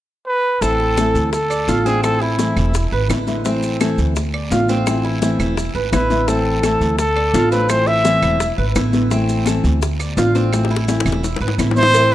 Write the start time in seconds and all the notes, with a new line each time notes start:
0.26 B4
0.61 A1 E3 A3 C4 E4 A4, high bongo, high conga, long guiro, maracas
0.80 high bongo, high conga
0.97 E3 A3 C4 E4 A4, high bongo, high conga, short guiro, claves, maracas
1.14 D2, high bongo, high conga, short guiro, maracas
1.32 A4, muted nylon-string guitar stroke, high bongo, high conga, long guiro, maracas
1.50 D5, high conga, claves, maracas
1.68 A1 D3 A3 D4 F4, high bongo, low bongo, high conga, short guiro, maracas
1.86 A3 C4 D4 F4 G#4, high bongo, high conga, short guiro, maracas
2.03 E3 A3 C4 E4 A4, high bongo, high conga, long guiro, claves, maracas
2.21 E4, high bongo, high conga
2.39 E3 A3 C4 E4, high bongo, high conga, short guiro, maracas
2.56 E1 E4, high bongo, high conga, short guiro, claves, maracas
2.74 muted nylon-string guitar stroke, high bongo, high conga, long guiro, maracas
2.92 G#1 B4, high conga
3.09 A1 D3 G#3 B3 E4, high bongo, low bongo, high conga, short guiro, claves, maracas
3.27 D3 G#3 B3 E4, high bongo, high conga, short guiro, maracas
3.45 E3 A3 C4 E4, high bongo, high conga, long guiro, maracas
3.63 high bongo, high conga, maracas
3.80 E3 A3 C4 E4 A4, high bongo, high conga, short guiro, claves, maracas
3.98 D2, high bongo, high conga, short guiro, maracas
4.16 muted nylon-string guitar stroke, high bongo, high conga, long guiro, maracas
4.34 D5, high conga, claves
4.51 A1 D3 A3 D4 F4, high bongo, low bongo, high conga, short guiro, maracas
4.68 A3 C4 D4 F4, high bongo, high conga, short guiro, maracas
4.86 E3 A3 C4 E4, high bongo, high conga, long guiro, claves, maracas
5.04 E4, high bongo, high conga
5.21 E3 A3 C4 E4, high bongo, high conga, short guiro, maracas
5.39 E1 E4, high bongo, high conga, short guiro, claves, maracas
5.57 muted nylon-string guitar stroke, high bongo, high conga, long guiro, maracas
5.75 G#1 B4, high conga
5.92 A1 D3 G#3 B3 E4 B4, high bongo, low bongo, high conga, short guiro, claves, maracas
6.10 D3 G#3 B3 E4, high bongo, high conga, short guiro, maracas
6.28 E3 A3 C4 E4 A4, high bongo, high conga, long guiro, maracas
6.46 high bongo, high conga
6.63 E3 A3 C4 E4 A4, high bongo, high conga, short guiro, claves, maracas
6.81 D2, high bongo, high conga, short guiro, maracas
6.98 A4, high bongo, high conga, long guiro, maracas
7.16 D5, high conga, claves
7.34 A1 D3 A3 D4 F4, high bongo, low bongo, high conga, short guiro, maracas
7.51 A3 C4 D4 F4 B4, high bongo, short guiro, maracas
7.69 E3 A3 C4 E4 C5, high bongo, high conga, long guiro, claves, maracas
7.87 E4 E5, high bongo, high conga
8.04 E3 A3 C4 E4, high bongo, high conga, short guiro, maracas
8.22 E1 E4, high bongo, high conga, short guiro, claves, maracas
8.40 high bongo, high conga, long guiro, maracas
8.58 G#1 B4, high conga
8.75 A1 D3 G#3 B3 E4, high bongo, low bongo, high conga, short guiro, claves, maracas
8.93 D3 G#3 B3 E4, high bongo, high conga, short guiro, maracas
9.11 E3 A3 C4 E4, high bongo, long guiro, maracas
9.29 high bongo, high conga, maracas
9.46 E3 A3 C4 E4 A4, high bongo, high conga, short guiro, claves, maracas
9.64 D2, high bongo, high conga, short guiro, maracas
9.82 muted nylon-string guitar stroke, high bongo, high conga, long guiro, maracas
10.00 D5, high conga, claves, maracas
10.17 A1 D3 A3 D4 F4, high bongo, low bongo, high conga, short guiro, maracas
10.34 A3 C4 D4 F4, high bongo, high conga, short guiro, maracas
10.52 E3 A3 C4 E4, high bongo, high conga, long guiro, claves, maracas
10.65 high bongo
10.71 E4, high conga
10.76 high bongo
10.87 E3 A3 C4 E4, high bongo, high conga, short guiro, maracas
11.00 low bongo
11.05 E1 E4, high conga, short guiro, claves, maracas
11.12 high bongo
11.23 muted nylon-string guitar stroke, low bongo, high conga, long guiro, maracas
11.36 low bongo
11.41 G#1 B4, high conga
11.48 low bongo
11.58 A1 D3 G#3 B3 E4, low bongo, high conga, short guiro, claves, maracas
11.71 low bongo
11.76 D3 G#3 B3 E4 C5, high conga, short guiro, maracas
11.83 low bongo
11.94 E3 A3 C4 E4, cowbell, high conga, long guiro, maracas
12.12 E4